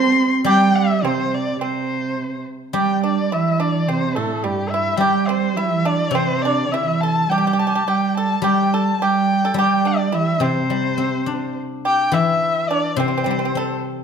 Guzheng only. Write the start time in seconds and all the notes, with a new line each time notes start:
Already playing: G3
0.44 G3
2.73 G3
4.97 G3
6.11 C3
8.42 G3
9.54 G3
10.40 C3
10.70 G3
10.98 C4
11.26 D4
12.12 E3
12.96 C3
13.26 G3
13.55 C4